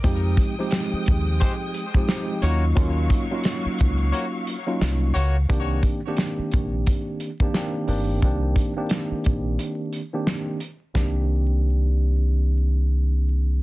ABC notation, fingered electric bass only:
X:1
M:4/4
L:1/8
Q:"Swing 16ths" 1/4=88
K:Cm
V:1 name="Fingered electric bass" clef=bass
F,, z2 E,, z3 E,, | E,, z2 _D,, z2 C,, D,, | C,, z2 B,,, z3 G,,, | C,, z2 B,,, z4 |
C,,8 |]